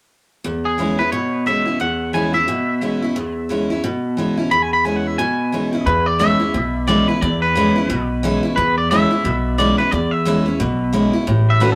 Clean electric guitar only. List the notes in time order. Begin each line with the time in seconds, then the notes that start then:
0.65 G#4
0.99 B4
1.12 C#5
1.47 E5
1.81 F#5
2.14 G#5
2.34 E5
4.51 B5
4.62 G#5
4.73 B5
4.85 G#5
4.96 F#5
5.07 E5
5.18 G#5
5.86 B4
6.06 D5
6.20 E5
6.88 D5
7.08 B4
7.21 D5
7.42 B4
8.56 B4
8.78 D5
8.91 E5
9.58 D5
9.78 B4
9.91 D5
10.11 E5
11.50 E5
11.61 B4